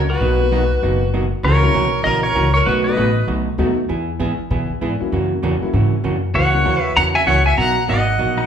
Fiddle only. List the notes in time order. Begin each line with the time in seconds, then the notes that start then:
0.10 F#4
1.44 A#4
2.04 A#4
2.23 A#4
2.53 A#4
2.64 F#4
2.84 B4
6.35 C#5
6.79 B4
6.96 F#5
7.15 E5
7.27 C#5
7.46 E5
7.58 F#5
7.89 D#5